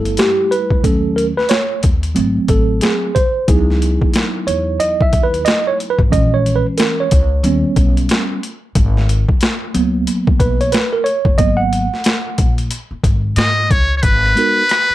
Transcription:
0.00 0.15 G1 medium
0.00 0.80 G3 medium
0.00 0.80 A3 soft
0.00 0.81 E4 medium
0.00 0.20 A4 medium
0.05 closed hi-hat medium
0.17 0.53 G4 medium
0.17 snare loud
0.17 closed hi-hat medium
0.51 0.85 B4 medium
0.51 closed hi-hat medium
0.70 0.84 C2 medium
0.70 kick medium
0.83 1.32 D#2 loud
0.83 1.31 F#3 soft
0.83 1.31 A3 soft
0.83 1.31 C#4 medium
0.83 1.15 A4 medium
0.83 kick loud
0.83 closed hi-hat medium
1.16 1.26 A#4 medium
1.16 closed hi-hat medium
1.37 1.50 B4 medium
1.37 snare soft
1.49 1.81 C#5 medium
1.49 snare loud
1.49 closed hi-hat medium
1.83 2.13 D#2 medium
1.83 kick loud
1.83 closed hi-hat medium
2.03 closed hi-hat medium
2.14 2.35 G#1 medium
2.14 3.10 F#3 soft
2.14 3.11 A3 soft
2.14 3.11 C4 medium
2.14 closed hi-hat medium
2.37 muted upright bass stroke soft
2.48 2.78 A1 medium
2.48 2.80 A4 medium
2.48 kick medium
2.48 closed hi-hat medium
2.81 3.16 G#4 medium
2.81 snare medium
2.81 closed hi-hat medium
3.15 3.49 C5 loud
3.15 kick medium
3.15 closed hi-hat medium
3.48 3.96 C#2 medium
3.48 6.08 F#3 soft
3.48 6.08 B3 soft
3.48 6.08 D#4 medium
3.48 6.08 E4 soft
3.48 4.11 G#4 medium
3.48 kick loud
3.48 closed hi-hat medium
3.70 snare soft
3.82 closed hi-hat medium
4.01 kick medium
4.14 snare loud
4.14 closed hi-hat medium
4.47 4.77 E2 medium
4.47 4.81 C#5 medium
4.47 closed hi-hat medium
4.80 5.02 D#5 medium
4.80 closed hi-hat medium
5.01 5.25 E5 medium
5.01 muted upright bass stroke soft
5.01 kick loud
5.13 5.42 D#2 medium
5.13 kick loud
5.13 closed hi-hat medium
5.23 5.46 B4 medium
5.34 closed hi-hat medium
5.45 5.68 D#5 loud
5.45 snare medium
5.45 closed hi-hat medium
5.67 5.77 C#5 medium
5.80 closed hi-hat medium
5.90 6.00 B4 medium
5.99 6.10 G#1 medium
5.99 kick medium
6.11 6.60 A#1 loud
6.11 7.06 E3 soft
6.11 7.07 G#3 soft
6.11 7.07 C#4 medium
6.11 6.35 D#5 medium
6.11 kick loud
6.11 closed hi-hat medium
6.34 6.56 C#5 medium
6.46 closed hi-hat medium
6.56 6.66 B4 medium
6.78 7.00 A#4 medium
6.78 snare loud
6.78 closed hi-hat medium
7.00 7.95 C#5 medium
7.11 7.41 C#2 loud
7.11 kick medium
7.11 closed hi-hat medium
7.43 7.62 D#2 loud
7.43 8.39 G3 medium
7.43 8.39 B3 medium
7.43 8.39 C#4 medium
7.43 closed hi-hat medium
7.64 muted upright bass stroke soft
7.76 8.06 B1 medium
7.76 kick medium
7.76 closed hi-hat medium
7.97 closed hi-hat medium
8.09 snare loud
8.09 closed hi-hat medium
8.43 closed hi-hat medium
8.75 9.24 G#1 loud
8.75 kick loud
8.75 closed hi-hat loud
8.97 snare soft
9.09 closed hi-hat medium
9.29 kick medium
9.41 snare loud
9.41 closed hi-hat medium
9.74 10.04 C#2 medium
9.74 10.69 F#3 medium
9.74 10.70 A#3 medium
9.74 10.70 B3 medium
9.74 closed hi-hat medium
10.07 closed hi-hat medium
10.27 muted upright bass stroke soft
10.27 kick loud
10.40 10.70 B1 medium
10.40 10.61 B4 medium
10.40 kick loud
10.40 closed hi-hat medium
10.61 10.74 C#5 medium
10.61 closed hi-hat soft
10.72 10.94 B4 medium
10.72 snare loud
10.72 closed hi-hat medium
10.93 11.06 A#4 medium
11.04 11.39 C#5 medium
11.04 closed hi-hat medium
11.25 11.39 F#1 medium
11.25 kick medium
11.38 11.87 G#1 loud
11.38 11.86 F#3 medium
11.38 11.87 A#3 soft
11.38 11.87 B3 medium
11.38 11.60 D#5 loud
11.38 kick loud
11.38 closed hi-hat loud
11.57 12.53 F#5 loud
11.73 closed hi-hat medium
11.94 snare soft
12.04 snare loud
12.04 closed hi-hat medium
12.38 12.68 A#1 medium
12.38 kick medium
12.38 closed hi-hat medium
12.58 closed hi-hat medium
12.71 closed hi-hat medium
12.91 muted upright bass stroke soft
13.04 13.33 G#1 loud
13.04 kick loud
13.04 closed hi-hat medium
13.36 13.72 G#2 loud
13.36 13.72 D#5 loud
13.36 snare loud
13.36 closed hi-hat medium
13.71 14.00 C#2 medium
13.71 13.96 C#5 loud
13.71 kick loud
13.71 closed hi-hat medium
13.97 14.04 C#5 medium
14.02 14.32 G#1 loud
14.02 14.95 B4 loud
14.02 kick loud
14.02 closed hi-hat medium
14.26 cross-stick soft
14.35 14.61 G#3 medium
14.35 14.62 B3 medium
14.35 14.62 D#4 medium
14.35 14.62 F#4 medium
14.35 14.63 A#4 medium
14.35 closed hi-hat medium
14.69 cross-stick loud
14.69 closed hi-hat medium
14.90 muted upright bass stroke soft

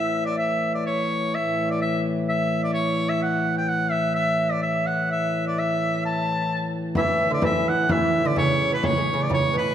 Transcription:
0.00 1.35 A2 medium
0.00 1.35 E3 medium
0.00 0.24 E5 medium
0.26 0.37 D5 medium
0.38 0.72 E5 medium
0.75 0.86 D5 medium
0.86 1.36 C#5 medium
1.35 6.95 A2 medium
1.35 6.95 E3 medium
1.35 1.69 E5 medium
1.70 1.81 D5 medium
1.82 2.03 E5 medium
2.29 2.61 E5 medium
2.64 2.73 D5 medium
2.74 3.11 C#5 medium
3.09 3.21 E5 medium
3.22 3.55 F#5 medium
3.58 3.70 G5 medium
3.69 3.93 F#5 medium
3.91 4.15 E5 medium
4.15 4.53 E5 medium
4.52 4.62 D5 medium
4.63 4.88 E5 medium
4.86 5.09 F#5 medium
5.11 5.43 E5 medium
5.47 5.60 D5 medium
5.59 6.04 E5 medium
6.06 6.70 A5 medium
6.95 9.75 A2 medium
6.95 9.75 E3 medium
6.95 7.30 E3 medium
6.95 7.29 E5 medium
6.95 frame drum medium
7.31 7.41 D3 medium
7.31 7.43 D5 medium
7.42 7.88 E3 medium
7.42 7.70 E5 medium
7.42 frame drum medium
7.66 7.93 F#5 medium
7.66 frame drum soft
7.89 8.25 E3 medium
7.89 8.28 E5 loud
7.89 frame drum medium
8.25 8.36 D3 medium
8.25 8.38 D5 medium
8.36 8.73 C#3 medium
8.36 8.70 C#5 medium
8.36 frame drum medium
8.72 8.84 B2 medium
8.72 8.87 B4 medium
8.83 8.97 C#3 medium
8.83 9.24 C#5 medium
8.83 frame drum medium
8.98 9.12 C#3 medium
9.07 frame drum soft
9.14 9.28 C#3 medium
9.22 9.32 D5 medium
9.30 9.54 C#3 medium
9.30 frame drum medium
9.34 9.54 C#5 medium
9.53 9.75 B2 medium
9.58 9.75 B4 medium

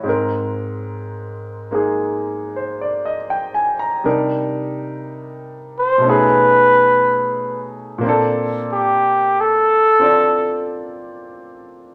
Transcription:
0.00 4.04 G#2 medium
0.00 0.23 C#5 soft
0.04 1.69 G#3 soft
0.04 4.06 C4 soft
0.09 4.04 A#4 medium
1.71 4.05 G#3 soft
1.71 4.05 A#3 soft
1.71 4.04 D#4 soft
1.71 4.06 G#4 soft
2.56 2.87 C5 soft
2.81 3.16 D5 soft
3.05 3.51 D#5 soft
3.30 3.73 G5 soft
3.54 3.86 G#5 medium
3.79 4.15 A#5 medium
4.04 6.03 C3 medium
4.04 6.03 G3 soft
4.04 6.04 D4 soft
4.04 6.04 D#4 soft
4.04 6.04 A#4 medium
5.79 6.11 C5 medium
5.98 7.99 B2 medium
5.98 8.00 A3 medium
6.04 8.01 C#4 medium
6.04 8.03 D#4 medium
6.09 8.04 G#4 medium
6.09 7.70 B4 medium
7.98 11.95 A#2 medium
7.98 11.95 A#3 medium
8.03 9.98 C4 medium
8.03 10.00 D4 medium
8.09 11.95 A4 medium
8.73 9.42 G4 medium
9.40 10.92 A4 medium
9.99 11.95 C4 soft
9.99 11.95 D4 soft
9.99 11.95 F4 soft
9.99 11.95 D5 soft

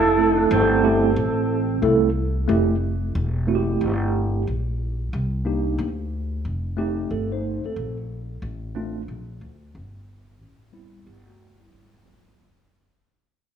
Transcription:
0.00 0.48 F1 loud
0.00 0.37 E4 medium
0.00 1.80 A4 medium
0.17 0.82 A3 medium
0.17 0.83 C4 medium
0.17 0.83 E4 medium
0.17 1.13 A4 medium
0.37 0.51 D4 medium
0.51 1.14 G1 loud
0.51 1.79 C4 medium
0.83 1.09 A3 medium
0.83 1.10 C4 medium
0.83 1.10 E4 medium
0.83 1.10 G4 loud
1.16 1.79 A1 loud
1.82 2.45 C2 medium
1.82 2.08 A3 medium
1.82 2.08 C4 medium
1.82 2.09 E4 medium
1.82 2.09 A4 medium
2.48 3.11 F1 medium
2.48 2.74 A3 medium
2.48 2.74 C4 medium
2.48 2.75 E4 medium
2.48 2.75 G4 medium
3.15 3.78 E1 loud
3.47 4.42 A3 medium
3.47 4.42 C4 medium
3.47 4.42 E4 medium
3.47 3.56 F#4 medium
3.55 4.46 G4 medium
3.81 4.43 G1 medium
4.47 5.10 A#1 medium
5.13 5.75 C2 medium
5.45 5.87 A#3 medium
5.45 5.87 D4 medium
5.45 5.87 D#4 medium
5.45 5.87 G4 medium
5.78 6.41 D2 loud
6.45 7.07 F1 medium
6.77 7.71 A3 medium
6.77 7.10 C4 medium
6.77 7.11 D#4 medium
6.77 7.11 G4 medium
7.11 7.62 G1 medium
7.11 7.31 C4 soft
7.11 7.31 A4 medium
7.32 7.64 D#4 soft
7.32 7.63 C5 medium
7.64 7.96 C4 medium
7.64 7.96 A4 medium
7.64 muted upright bass stroke soft
7.76 8.39 A#1 medium
8.42 9.05 A1 medium
8.75 9.01 A3 medium
8.75 9.01 C4 medium
8.75 9.01 D4 medium
8.75 9.02 F4 medium
9.08 9.39 A#1 medium
9.41 9.76 D2 medium
9.75 10.41 G1 medium
10.41 11.03 A1 medium
10.72 11.06 G3 medium
10.72 11.06 B3 medium
10.72 11.06 C4 medium
10.72 11.06 E4 medium
11.06 11.69 G1 medium
11.06 11.26 B3 medium
11.06 11.26 G4 medium
11.27 11.59 A3 soft
11.27 11.58 F#4 medium
11.60 11.92 G3 soft
11.60 11.92 E4 medium
11.72 12.35 G#1 medium
12.04 12.46 F#3 medium
12.04 12.46 A#3 medium
12.04 12.46 C4 medium
12.04 12.47 F4 medium
12.38 13.00 F#1 medium

